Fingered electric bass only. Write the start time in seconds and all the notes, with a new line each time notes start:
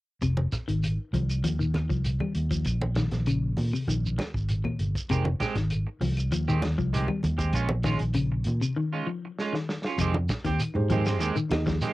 0.21 F1
0.52 muted fingered electric bass stroke
0.68 G#1
1.13 C2
1.44 D#2
1.90 C2
2.36 D#2
2.66 A#1
3.12 A#1
3.58 A#2
3.88 A#1
4.34 G#1
4.79 G1
5.09 F1
5.40 muted fingered electric bass stroke
5.55 G#1
6.01 C2
6.31 D#2
6.78 C2
7.24 D#2
7.54 A#1
8.00 A#1
8.46 A#2
9.98 F2
10.45 D#2
10.75 G#2
11.20 D#2
11.35 muted fingered electric bass stroke
11.51 D#2